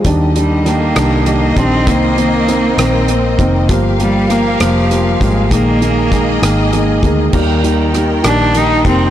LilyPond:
<<
  \new Staff \with { instrumentName = "String section" } { \time 6/8 \key ees \major \tempo 4. = 66 << { ees''2.~ | ees''2. | f''2. | ees''2. |
g''2. | } \\ { <d g'>2. | <c' bes'>2. | <bes g'>2. | <bes aes'>2. |
<ees bes'>2. | } >> }
  \new Staff \with { instrumentName = "Cello" } { \time 6/8 \key ees \major r8 g8 bes4. c'8 | bes2~ bes8 r8 | r8 g8 bes8 f4 aes8 | bes2 r4 |
r4. d'8 ees'8 c'8 | }
  \new Staff \with { instrumentName = "Felt piano" } { \clef bass \time 6/8 \key ees \major <ees g d'>8 <ees g d'>8 <ees g d'>8 <ees g d'>8 <ees g d'>8 <ees g d'>8 | <ees bes c'>8 <ees bes c'>8 <ees bes c'>8 <ees bes c'>8 <bes c'>8 <ees bes c'>8 | <f g bes>8 <f g bes>8 <f g bes>8 <f g bes>8 <f g bes>8 <f g bes>8 | <ees aes bes>8 <ees aes bes>8 <ees aes bes>8 <ees aes bes>8 <ees aes bes>8 <ees aes bes>8 |
<ees g bes>8 <ees g bes>8 <ees g bes>8 <ees g bes>8 <ees g bes>8 <ees g bes>8 | }
  \new Staff \with { instrumentName = "Fingered electric bass" } { \clef bass \time 6/8 \key ees \major ees,4. c,4 bes,,8 | c,4. bes,,4 f,,8 | g,,4. f,,4 aes,,8 | bes,,4. aes,,4 d,8 |
ees,4. bes,,4 f,,8 | }
  \new DrumStaff \with { instrumentName = "Drums" } \drummode { \time 6/8 <hh bd>8 hh8 <hh ss>8 <hh ss>8 hh8 <hh bd>8 | <hh bd>8 hh8 <hh ss>8 <hh ss>8 hh8 <hh bd>8 | <hh bd>8 hh8 <hh ss>8 <hh ss>8 hh8 <hh bd>8 | <hh bd>8 hh8 <hh bd ss>8 <hh ss>8 hh8 <hh bd>8 |
<cymc bd>8 hh8 <hh ss>8 <hh ss>8 hh8 <hh bd>8 | }
>>